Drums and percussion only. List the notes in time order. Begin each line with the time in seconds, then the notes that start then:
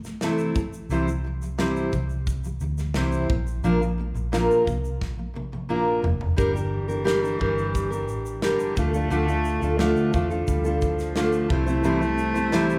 0.04 snare, shaker
0.21 snare, shaker
0.38 shaker
0.55 kick, shaker
0.73 shaker
0.90 shaker
1.08 shaker
1.42 shaker
1.59 snare, shaker
1.76 shaker
1.93 kick, shaker
2.10 shaker
2.27 kick, shaker
2.44 shaker
2.60 shaker
2.78 snare, shaker
2.94 snare, shaker
3.12 shaker
3.30 kick
3.47 shaker
3.64 shaker
3.82 shaker
4.16 shaker
4.33 snare, shaker
4.51 shaker
4.67 kick, shaker
4.85 shaker
5.01 kick, snare
5.36 high tom
5.53 high tom
6.04 floor tom
6.21 floor tom
6.38 kick, shaker
6.56 shaker
6.89 shaker
7.07 snare, shaker
7.24 shaker
7.41 kick
7.58 shaker
7.75 kick, shaker
7.92 shaker
8.08 shaker
8.26 shaker
8.42 snare, shaker
8.59 shaker
8.77 kick, shaker
8.94 shaker
9.11 shaker
9.29 shaker
9.45 shaker
9.62 shaker
9.79 snare, shaker
9.97 shaker
10.13 kick, shaker
10.31 shaker
10.48 kick, shaker
10.65 shaker
10.81 kick, shaker
10.99 snare, shaker
11.16 snare, shaker
11.32 shaker
11.50 kick
11.67 shaker
11.84 shaker
12.02 shaker
12.18 shaker
12.36 shaker
12.52 snare, shaker
12.70 shaker